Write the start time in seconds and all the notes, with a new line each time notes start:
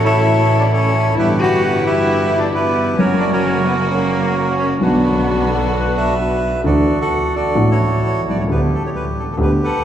Already playing: A1 A2 C#3 E3 A3 C#4 E4
0.03 E4 A4 C#5 E5
0.59 D4 D5
0.70 C#4 E4 A4 C#5
1.14 G1 G2 E3 G3 B3 E4
1.18 E4 G4 B4 E5
1.39 F#4 B4 F#5
1.82 E4 G4
1.87 B4 E5
2.39 D4
2.44 D5
2.53 B3 E4 G4 B4
2.97 F#1 F#2 C#3 F#3 A#3 C#4 F#4 A#4 C#5
3.01 F#4
3.19 D4 D5
3.29 C#4 F#4 A#4 C#5
3.64 B3 B4
3.87 A#3 C#4 F#4 A#4
4.56 C#4 C#5
4.78 B1 B2 D3 F#3 B3 D4 F#4 B4
4.82 F#4
5.27 F#4
5.49 A4
5.73 B4
5.97 B4 E5
6.20 F#4
6.64 D2 D3 E3 A3 D4 F#4 A4 D5
7.01 A4 F#5
7.36 F#4 A4 D5
7.55 A1 A2 E3 A3 D4 F#4
7.70 E4 F#4 C#5
8.06 C#5
8.24 C2
8.30 B1 D5
8.37 C2 C#5
8.42 C#2
8.48 D2 D3 A3 B3 G4 B4
8.75 A4
8.86 C#5
8.96 B4
9.19 A4
9.32 A4
9.37 D2 D3 A3 B3 G4
9.41 G4 B4
9.64 A4 B4 F#5